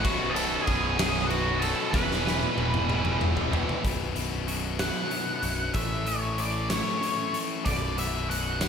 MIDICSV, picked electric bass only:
0, 0, Header, 1, 2, 480
1, 0, Start_track
1, 0, Tempo, 635593
1, 25, Time_signature, 6, 3, 24, 8
1, 6557, End_track
2, 0, Start_track
2, 0, Title_t, "Picked electric bass"
2, 0, Program_c, 0, 34
2, 35, Note_on_c, 0, 23, 105
2, 428, Note_off_c, 0, 23, 0
2, 511, Note_on_c, 0, 23, 91
2, 1302, Note_off_c, 0, 23, 0
2, 1459, Note_on_c, 0, 28, 107
2, 1857, Note_off_c, 0, 28, 0
2, 1943, Note_on_c, 0, 28, 89
2, 2738, Note_off_c, 0, 28, 0
2, 2899, Note_on_c, 0, 23, 81
2, 3697, Note_off_c, 0, 23, 0
2, 4101, Note_on_c, 0, 23, 77
2, 4300, Note_off_c, 0, 23, 0
2, 4338, Note_on_c, 0, 33, 87
2, 5139, Note_off_c, 0, 33, 0
2, 5786, Note_on_c, 0, 23, 90
2, 6557, Note_off_c, 0, 23, 0
2, 6557, End_track
0, 0, End_of_file